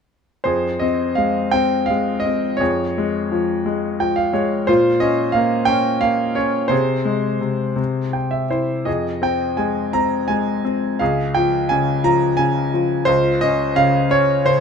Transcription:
0.44 F2 G#4 C5
0.80 C4 D#5
1.15 G#3 F5
1.51 C4 G5
1.86 F5
1.90 G#3
2.20 D#5
2.26 C4
2.57 G#4 C#5
2.61 F2
2.98 G#3
3.32 F3
3.66 G#3
4.00 F3 G5
4.16 F5
4.33 G#3 C#5
4.67 A#2 F4 C5
5.00 C#4 D#5
5.32 A#3 F5
5.65 C#4 G5
6.01 A#3 F5
6.35 C#4 C#5
6.68 C3 G#4 C5
7.05 G#3
7.41 C3
7.76 C3
8.13 G5
8.31 E5
8.50 E4 C5
8.85 F2 G#4 D#5
9.22 C4 G5
9.57 G#3 G#5
9.93 C4 A#5
10.28 G#3 G#5
10.65 C4
10.99 C#2 G#4 F5
11.35 F3 G5
11.69 C#3 G#5
12.04 F3 A#5
12.37 C#3 G#5
12.74 F3
13.05 C#2 F4 C5
13.41 C#4 D#5
13.76 C#3 F5
14.11 C#4 C#5
14.45 C#3 C5

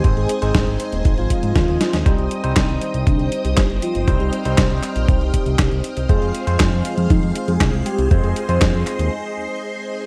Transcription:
Already playing: C5 D#5 G#5 D#6
0.04 G#1 G#3 C4 D#4 C5, kick, closed hi-hat
0.17 G#1 G#4, closed hi-hat
0.29 closed hi-hat
0.42 G#1 G#3 C4 D#4 G#4 C5, closed hi-hat
0.55 G#1, kick, snare, closed hi-hat
0.67 G#1, closed hi-hat
0.80 closed hi-hat
0.92 D#1, closed hi-hat
1.05 G#1, kick, closed hi-hat
1.18 G#1 F4, closed hi-hat
1.30 kick, closed hi-hat
1.43 G#2, closed hi-hat
1.56 D#2, kick, snare, closed hi-hat
1.68 D#2, closed hi-hat
1.81 snare, closed hi-hat
1.93 D#2, snare, closed hi-hat
2.06 C2 G3 C4 D#4 G4 C5 D#5 G5 D#6, kick, closed hi-hat
2.18 C2, closed hi-hat
2.31 closed hi-hat
2.44 C2 G3 C4 D#4 C5, closed hi-hat
2.56 C2 D#4, kick, snare, clap, closed hi-hat
2.69 C2, closed hi-hat
2.81 closed hi-hat
2.94 C2, closed hi-hat
3.07 C2 D4, kick, closed hi-hat
3.19 C2, closed hi-hat
3.32 closed hi-hat
3.45 C2 G4, closed hi-hat
3.57 G1, kick, snare, clap, closed hi-hat
3.70 G1, closed hi-hat
3.82 F4, closed hi-hat
3.95 G1, closed hi-hat
4.08 C2 G3 C4 D#4 C5 F6, kick, closed hi-hat
4.20 C2 G4, closed hi-hat
4.33 closed hi-hat
4.45 C2 G3 C4 D#4 G4 C5, closed hi-hat
4.58 C2, kick, snare, clap, closed hi-hat
4.70 C2, closed hi-hat
4.83 clap, closed hi-hat
4.96 A#1, closed hi-hat
5.08 C2, kick, closed hi-hat
5.21 C2 G4, closed hi-hat
5.34 kick, closed hi-hat
5.46 C2, closed hi-hat
5.59 C2, kick, snare, clap, closed hi-hat
5.71 C2, closed hi-hat
5.84 closed hi-hat
5.97 C2, closed hi-hat
6.09 F2 G#3 C4 F4 G#4 C5 F5 C6, kick, closed hi-hat
6.22 F2, closed hi-hat
6.35 closed hi-hat
6.47 F2 G#3 C4 F4 C5, closed hi-hat
6.60 F2 F4, kick, snare, clap, closed hi-hat
6.72 F2, closed hi-hat
6.85 closed hi-hat
6.97 F2, closed hi-hat
7.10 F2 D#4, kick, closed hi-hat
7.23 F2, closed hi-hat
7.35 closed hi-hat
7.48 F2 G#4, closed hi-hat
7.61 C2, kick, snare, clap, closed hi-hat
7.73 C2, closed hi-hat
7.86 G4, closed hi-hat
7.98 C2, closed hi-hat
8.11 F2 G#3 C4 F4 C5 D#5, kick, closed hi-hat
8.24 F2 G#4, closed hi-hat
8.36 closed hi-hat
8.49 F2 G#3 C4 F4 C5, closed hi-hat
8.61 F2, kick, snare, clap, closed hi-hat
8.74 F2, closed hi-hat
8.87 clap, closed hi-hat
8.99 D#2, closed hi-hat

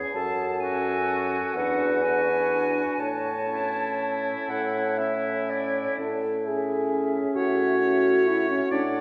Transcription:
Already playing: C#4 G#4
0.13 F#2 A4 A5
0.60 C#4 F#4 G#5
1.53 E2 D4 F#4 B4 F#5
2.00 D4 F#4 G#5
2.99 A2 C#5 A5
3.48 C#4 E4
4.49 A2 F#5
4.98 C#4 E4 E5
5.50 D5
5.99 A2 A4
6.45 C#4 G#4 E5
7.36 A2 F#4 C#5
7.80 C#4 E5
8.28 E4
8.51 C#4
8.70 A2 D4 D5 F#5

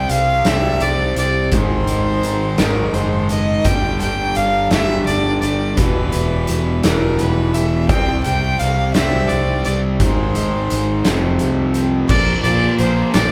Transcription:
Already playing: C3 G3 C4 G5
0.09 C2 F5, closed hi-hat
0.45 C2 G3 C4 E5, snare, closed hi-hat
0.50 C3
0.80 C2 C3 D5, closed hi-hat
1.16 C2 G3 D5, closed hi-hat
1.52 G#1 G#2 D#3 C5, kick, closed hi-hat
1.57 G#3
1.87 G#1 G#3, closed hi-hat
2.23 G#1 D#4, closed hi-hat
2.58 G#1 D#3 G#3 A#4, snare, closed hi-hat
2.63 G#2
2.94 F#1 D#3 C5, closed hi-hat
3.29 G#3 D#5, closed hi-hat
3.65 G1 G2 D3 G5, kick, closed hi-hat
3.70 G3
4.00 G1 G3 G5, closed hi-hat
4.35 G1 D4 F5, closed hi-hat
4.71 G1 D3 G3 E5, snare, closed hi-hat
4.76 G2
5.06 G1 D3 D5, closed hi-hat
5.40 G1 G3 D5, closed hi-hat
5.76 E1 E2 B2 E3 B4, kick, closed hi-hat
5.82 E3
6.12 E1 G3, closed hi-hat
6.47 E1 E4, closed hi-hat
6.83 E1 E2 B2 E3 G3 A#4, snare, closed hi-hat
7.19 E1 E3 B4, closed hi-hat
7.53 G3 E5, closed hi-hat
7.88 C2 C3 G3 G5, kick, closed hi-hat
7.93 C4
8.23 C2 G3 G5, closed hi-hat
8.59 C2 F5, closed hi-hat
8.93 C2 G3 C4 E5, snare, closed hi-hat
8.98 C3 G3
9.28 C2 C3 D5, closed hi-hat
9.65 C2 G3 D5, closed hi-hat
10.00 G#1 G#2 C5, kick, closed hi-hat
10.04 D#3 G#3
10.35 G#1 G#3, closed hi-hat
10.70 G#1 D#4, closed hi-hat
11.05 F1 F2, snare, closed hi-hat
11.09 C3 F3
11.39 C2 C3, closed hi-hat
11.74 D#3, closed hi-hat
12.08 A#1 A#2 D5, kick, crash
12.12 F3 A#3
12.42 A#1 A#2 F3 D5, closed hi-hat
12.47 F3 A#3
12.78 A#1 A#2 C5, closed hi-hat
12.82 A#2 F3 A#3
13.13 A#1 A#2 F3 D5, snare, closed hi-hat
13.18 F3 A#3

